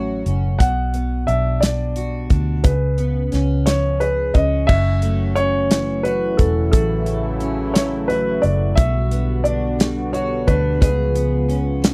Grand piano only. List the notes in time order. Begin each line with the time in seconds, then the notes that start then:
Already playing: C#5
0.59 F#5
1.27 E5
1.61 D5
2.64 B4
3.66 C#5
4.00 B4
4.34 D#5
4.67 E5
5.35 C#5
6.03 B4
6.37 A4
6.72 A4
7.74 C#5
8.08 B4
8.42 D5
8.75 E5
9.44 D5
10.13 C#5
10.47 B4
10.82 B4